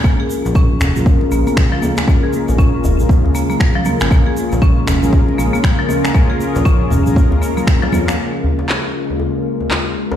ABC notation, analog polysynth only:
X:1
M:4/4
L:1/16
Q:"Swing 16ths" 1/4=118
K:Bbm
V:1 name="Analog polysynth"
z6 z [DFAB]8- [DFAB] | [DFAB]6- [DFAB] [DFAB]8- [DFAB] | [DAB]6- [DAB] [DFAB]8- [DFAB] | [DFAB]6- [DFAB] [DFAB]8- [DFAB] |
[DFAB]16 |]